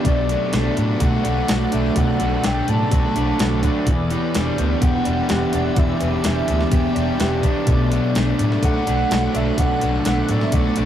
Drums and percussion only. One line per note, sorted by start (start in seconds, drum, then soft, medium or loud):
0.05 kick loud
0.05 closed hi-hat medium
0.29 closed hi-hat medium
0.53 snare loud
0.53 closed hi-hat medium
0.77 closed hi-hat medium
1.00 kick loud
1.00 closed hi-hat medium
1.25 closed hi-hat medium
1.48 snare loud
1.48 closed hi-hat medium
1.72 closed hi-hat medium
1.96 kick loud
1.96 closed hi-hat medium
2.20 closed hi-hat medium
2.44 snare medium
2.44 closed hi-hat medium
2.68 closed hi-hat medium
2.91 kick loud
2.91 closed hi-hat medium
3.16 closed hi-hat medium
3.39 snare loud
3.39 closed hi-hat medium
3.63 kick medium
3.63 closed hi-hat medium
3.87 kick medium
3.87 closed hi-hat medium
4.10 closed hi-hat medium
4.34 snare loud
4.34 closed hi-hat medium
4.58 closed hi-hat medium
4.82 kick loud
4.82 closed hi-hat medium
5.05 closed hi-hat medium
5.29 snare loud
5.29 closed hi-hat medium
5.53 closed hi-hat medium
5.76 kick loud
5.76 closed hi-hat medium
6.01 closed hi-hat medium
6.24 snare loud
6.24 closed hi-hat medium
6.48 closed hi-hat medium
6.61 snare soft
6.72 kick loud
6.72 closed hi-hat medium
6.96 closed hi-hat medium
7.20 snare loud
7.20 closed hi-hat medium
7.43 kick medium
7.43 closed hi-hat medium
7.67 kick loud
7.67 closed hi-hat medium
7.92 closed hi-hat medium
8.15 snare loud
8.15 closed hi-hat medium
8.39 closed hi-hat medium
8.52 snare soft
8.63 kick loud
8.63 closed hi-hat medium
8.87 closed hi-hat medium
9.11 snare loud
9.11 closed hi-hat loud
9.35 closed hi-hat medium
9.58 kick loud
9.58 closed hi-hat medium
9.81 closed hi-hat medium
10.05 snare medium
10.05 closed hi-hat medium
10.29 closed hi-hat medium
10.41 snare soft
10.52 kick loud
10.52 closed hi-hat medium
10.76 closed hi-hat medium